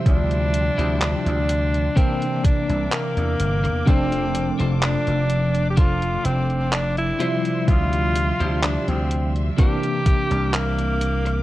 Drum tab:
HH |xxxxxxxxxxxxxxxx|xxxxxxxxxxxxxxxx|xxxxxxxxxxxxxxxx|
CP |----x-------x---|----x-------x---|----x-------x---|
BD |o-------o-o-----|o-------o-------|o-------o-o-----|